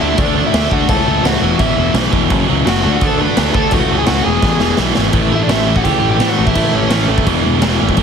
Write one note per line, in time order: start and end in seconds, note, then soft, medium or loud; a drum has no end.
0.00 0.13 D2 medium
0.00 0.17 D3 medium
0.00 0.18 A3 loud
0.00 0.18 D4 loud
0.00 0.17 E4 medium
0.00 0.19 E5 medium
0.17 0.42 D2 medium
0.17 0.34 D3 loud
0.17 0.35 A3 loud
0.17 0.43 D4 medium
0.17 0.35 D4 loud
0.17 0.45 D5 loud
0.17 kick loud
0.17 crash medium
0.35 0.51 D3 loud
0.35 0.53 A3 medium
0.35 0.52 D4 medium
0.46 0.71 E4 medium
0.46 0.73 E5 loud
0.53 0.66 D2 medium
0.53 0.69 D3 loud
0.53 0.70 A3 medium
0.53 0.70 D4 loud
0.53 snare loud
0.53 crash medium
0.70 0.84 D2 medium
0.70 0.87 D3 medium
0.70 0.88 A3 medium
0.70 0.88 D4 loud
0.70 0.89 F#4 medium
0.70 0.89 F#5 loud
0.70 kick medium
0.88 1.01 C#2 medium
0.88 1.06 A2 loud
0.88 1.07 E3 loud
0.88 1.07 A3 loud
0.88 1.22 A4 loud
0.88 1.26 A5 loud
0.88 kick loud
0.88 crash medium
1.06 1.18 C#2 medium
1.06 1.22 A2 medium
1.06 1.23 E3 medium
1.06 1.24 A3 loud
1.23 1.36 C#2 loud
1.23 1.41 A2 loud
1.23 1.41 E3 loud
1.23 1.41 A3 loud
1.23 1.58 F#4 medium
1.23 1.59 F#5 loud
1.23 snare loud
1.23 crash medium
1.41 1.54 E1 loud
1.41 1.58 E2 medium
1.41 1.59 B2 loud
1.41 1.59 E3 loud
1.59 1.72 A1 loud
1.59 1.77 E2 loud
1.59 1.78 B2 loud
1.59 1.78 E3 loud
1.59 1.92 E4 medium
1.59 1.92 E5 loud
1.59 kick loud
1.59 crash medium
1.77 1.89 E1 medium
1.77 1.95 E2 loud
1.77 1.96 B2 medium
1.77 1.96 E3 loud
1.94 2.06 B1 loud
1.94 2.12 E2 medium
1.94 2.12 B2 loud
1.94 2.13 E3 loud
1.94 snare loud
1.94 crash medium
2.13 2.31 E1 medium
2.13 2.30 E2 medium
2.13 2.30 B2 medium
2.13 2.30 E3 loud
2.13 kick medium
2.30 2.43 F#1 loud
2.30 2.47 F#2 loud
2.30 2.47 C#3 loud
2.30 2.48 F#3 loud
2.30 kick loud
2.30 crash medium
2.48 2.61 C#2 loud
2.48 2.66 F#2 medium
2.48 2.66 C#3 loud
2.48 2.67 F#3 loud
2.66 2.85 F#1 loud
2.66 2.83 F#2 loud
2.66 2.83 C#3 loud
2.66 2.83 F#3 loud
2.66 2.91 F#4 medium
2.66 2.95 F#5 medium
2.66 snare loud
2.66 crash medium
2.83 2.96 D2 loud
2.83 3.01 D3 loud
2.83 3.03 A3 loud
2.83 3.02 D4 loud
2.94 3.02 F#4 medium
2.94 3.06 F#5 medium
3.01 3.25 D2 loud
3.01 3.19 D3 loud
3.01 3.20 A3 loud
3.01 3.21 D4 loud
3.01 3.19 A4 medium
3.01 kick loud
3.01 crash medium
3.06 3.22 A5 loud
3.20 3.36 D3 loud
3.20 3.37 A3 loud
3.20 3.37 D4 loud
3.20 3.53 B4 loud
3.20 3.58 B5 loud
3.37 3.49 D2 loud
3.37 3.54 D3 medium
3.37 3.54 A3 medium
3.37 3.54 D4 loud
3.37 snare loud
3.37 crash medium
3.54 3.66 D2 medium
3.54 3.71 D3 medium
3.54 3.72 A3 medium
3.54 3.72 D4 loud
3.54 3.71 A4 medium
3.54 3.74 A5 medium
3.54 kick loud
3.71 3.84 C#2 medium
3.71 3.89 A2 loud
3.71 3.90 E3 loud
3.71 3.90 A3 loud
3.71 3.98 F#4 medium
3.71 3.98 F#5 loud
3.71 kick loud
3.71 crash medium
3.90 4.03 C#2 loud
3.90 4.06 A2 medium
3.90 4.07 E3 loud
3.90 4.07 A3 loud
3.97 4.02 G#4 medium
3.97 4.02 G#5 medium
4.06 4.20 C#2 medium
4.06 4.24 A2 loud
4.06 4.24 E3 loud
4.06 4.25 A3 loud
4.06 4.24 F#4 medium
4.06 4.24 F#5 medium
4.06 snare loud
4.06 crash medium
4.24 4.37 E1 medium
4.24 4.41 E2 loud
4.24 4.41 B2 loud
4.24 4.42 E3 loud
4.24 4.74 G#4 medium
4.24 4.74 G#5 medium
4.42 4.55 A1 loud
4.42 4.59 E2 loud
4.42 4.59 B2 loud
4.42 4.60 E3 loud
4.42 kick loud
4.42 snare medium
4.60 4.72 E1 medium
4.60 4.77 E2 medium
4.60 4.78 B2 medium
4.60 4.79 E3 medium
4.60 snare medium
4.77 4.90 B1 medium
4.77 4.95 E2 medium
4.77 4.96 B2 loud
4.77 4.97 E3 loud
4.77 snare loud
4.95 5.09 G#1 medium
4.95 5.13 E2 medium
4.95 5.13 B2 medium
4.95 5.14 E3 medium
4.95 snare loud
5.13 5.29 A1 medium
5.13 5.48 A2 loud
5.13 5.49 E3 loud
5.13 5.49 A3 loud
5.13 kick loud
5.13 crash medium
5.32 5.48 A1 medium
5.32 5.40 E4 medium
5.32 5.42 E5 loud
5.40 5.49 D4 medium
5.40 5.50 D5 medium
5.49 5.81 A1 medium
5.49 5.66 A2 medium
5.49 5.67 E3 medium
5.49 5.67 A3 medium
5.49 5.74 E4 medium
5.49 5.76 E5 loud
5.49 snare loud
5.49 crash medium
5.67 5.83 A2 medium
5.67 5.84 E3 medium
5.67 5.84 A3 medium
5.76 5.83 F#4 medium
5.76 5.84 F#5 medium
5.76 kick medium
5.83 6.01 C#2 loud
5.83 6.18 A2 loud
5.83 6.20 E3 loud
5.83 6.20 A3 loud
5.83 6.09 G4 loud
5.83 6.10 G5 loud
5.83 kick medium
5.83 crash medium
6.03 6.19 A1 medium
6.10 6.27 G4 medium
6.10 6.28 G5 loud
6.20 6.36 A2 medium
6.20 6.38 E3 medium
6.20 6.38 A3 medium
6.20 snare loud
6.20 crash medium
6.28 6.45 F#4 medium
6.28 6.46 F#5 medium
6.38 6.54 A1 loud
6.38 6.54 A2 medium
6.38 6.55 E3 loud
6.38 6.55 A3 medium
6.46 6.72 E4 medium
6.46 6.74 E5 loud
6.46 kick medium
6.55 6.72 A1 loud
6.55 6.89 A2 medium
6.55 6.90 E3 loud
6.55 6.89 A3 loud
6.55 kick loud
6.55 crash medium
6.73 6.89 A1 medium
6.73 7.07 C#4 medium
6.73 7.07 C#5 medium
6.90 7.06 A1 medium
6.90 7.07 A2 medium
6.90 7.08 E3 medium
6.90 7.08 A3 loud
6.90 snare loud
6.90 crash medium
7.08 7.24 A1 medium
7.08 7.25 A2 medium
7.08 7.27 E3 medium
7.08 7.26 A3 medium
7.18 kick loud
7.26 7.42 E1 loud
7.26 7.60 E2 loud
7.26 7.61 B2 loud
7.26 7.62 E3 loud
7.26 kick medium
7.26 crash medium
7.44 7.60 E1 medium
7.61 7.77 E1 loud
7.61 7.78 E2 loud
7.61 7.79 B2 loud
7.61 7.80 E3 loud
7.61 snare loud
7.61 crash medium
7.80 7.96 G#1 medium
7.80 7.96 E2 medium
7.80 7.97 B2 medium
7.80 7.98 E3 medium
7.89 kick medium
7.97 8.03 A1 loud
7.97 8.03 A2 loud
7.97 8.03 E3 loud
7.97 8.03 A3 loud
7.97 kick loud
7.97 crash medium